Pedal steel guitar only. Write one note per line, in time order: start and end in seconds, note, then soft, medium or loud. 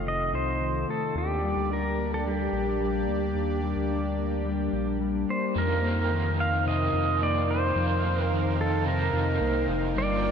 0.08 0.35 D#5 medium
0.35 0.91 C5 medium
0.90 1.17 A4 medium
1.18 1.73 G4 medium
1.73 2.14 A#4 medium
2.14 2.27 A4 medium
2.28 4.98 G4 medium
5.30 5.58 C5 medium
5.58 6.36 A#4 loud
6.40 6.67 F5 loud
6.68 7.23 D#5 medium
7.23 7.50 D5 loud
7.51 8.24 C5 medium
8.24 8.56 A#4 medium
8.61 8.88 A4 medium
8.88 9.66 A#4 medium
9.98 10.31 D5 loud